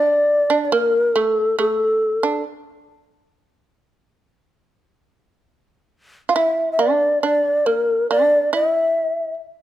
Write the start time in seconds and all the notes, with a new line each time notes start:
Already playing: D4 D5
0.50 D4
0.65 D5
0.72 A#3 A#4
1.16 A3 A4
1.59 A3 A4
2.23 D4
6.29 F4
6.34 E4 E5
6.72 E5
6.79 D4 D5
7.22 D4 D5
7.66 A#3 A#4
8.11 D4 D5
8.53 E4 E5